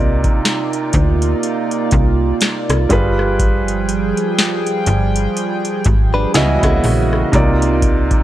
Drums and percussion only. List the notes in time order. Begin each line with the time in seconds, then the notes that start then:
0.24 kick, closed hi-hat
0.45 snare, closed hi-hat
0.73 closed hi-hat
0.93 kick, closed hi-hat
1.22 closed hi-hat
1.43 closed hi-hat
1.71 closed hi-hat
1.91 kick, closed hi-hat
2.41 snare, closed hi-hat
2.70 cross-stick, closed hi-hat
2.90 kick, closed hi-hat
3.19 cross-stick
3.40 kick, closed hi-hat
3.68 closed hi-hat
3.89 closed hi-hat
4.17 closed hi-hat
4.39 snare, closed hi-hat
4.67 closed hi-hat
4.86 closed hi-hat
5.16 closed hi-hat
5.37 closed hi-hat
5.65 closed hi-hat
5.84 kick, closed hi-hat
6.34 snare, closed hi-hat
6.63 kick, cross-stick, closed hi-hat
6.84 open hi-hat
7.13 cross-stick
7.33 kick, closed hi-hat
7.62 closed hi-hat
7.82 kick, closed hi-hat
8.11 kick, closed hi-hat